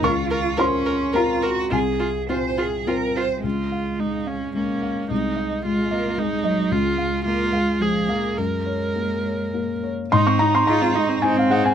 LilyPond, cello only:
\new Staff \with { instrumentName = "Cello" } { \time 3/4 \key des \major \tempo 4 = 108 f'8 f'8 des'4 f'8 ges'8 | aes'4 c''8 aes'8 bes'8 c''8 | aes2 bes4 | aes4 aes8 bes8 aes8 ges8 |
aes8 aes8 bes8 aes8 f8 bes8 | aes2~ aes8 r8 | ees'4 f'8 ees'8 c'4 | }